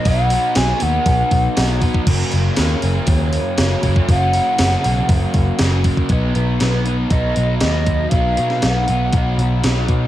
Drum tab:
CC |----------------|x---------------|----------------|----------------|
HH |o-o-o-o-o-o-o-o-|--o-o-o-o-o-o-o-|o-o-o-o-o-o-o-o-|o-o-o-o-o-o-o-o-|
SD |----o-------o---|----o-------o---|----o-------o---|----o-------o---|
BD |o-------o-o---oo|o-------o-----oo|o-------o-o---oo|o-------o-----o-|

CC |----------------|
HH |o-o-o-o-o-o-o-o-|
SD |---oo-------o---|
BD |o-------o-----o-|